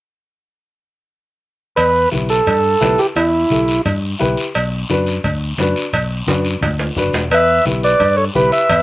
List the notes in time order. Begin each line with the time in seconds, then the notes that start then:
1.76 E2 B4, cowbell, high conga, long guiro
2.11 B1 E4 G4 B4, high conga, short guiro
2.29 A4, short guiro
2.46 G2, cowbell, high conga, low conga, long guiro
2.81 B1 E4 G4 B4, high conga, low timbale, short guiro
2.98 G4, short guiro
3.16 E2 E4, cowbell, high conga, long guiro
3.50 B1 E4 G4 A4, high conga, short guiro
3.68 short guiro
3.85 G2, cowbell, high conga, low conga, long guiro
4.19 B1 E4 G4 B4, high conga, short guiro
4.37 short guiro
4.54 B1, cowbell, high conga, long guiro
4.89 F#2 D4 F#4 B4, high conga, short guiro
5.06 short guiro
5.24 D2, cowbell, high conga, low conga, long guiro
5.58 F#2 D4 F#4 B4, high conga, low timbale, short guiro
5.76 short guiro
5.93 B1, cowbell, high conga, low conga, long guiro
6.27 F#2 D4 F#4 B4, high conga, high timbale, short guiro
6.45 short guiro
6.61 D2, cowbell, high conga, low conga, low timbale, long guiro
6.79 low timbale
6.96 F#1 D4 F#4 B4, high conga, low conga, short guiro
7.13 E1, low timbale, short guiro
7.31 E2 B4 E5, cowbell, high conga, long guiro
7.65 B1 E4 G4 B4, high conga, short guiro
7.83 B4 D5, short guiro
8.00 G2, cowbell, high conga, low conga, long guiro
8.17 A4 C#5
8.35 B1 E4 G4 B4, high conga, short guiro
8.52 B4 E5, short guiro
8.69 E2, cowbell, high conga, low conga, long guiro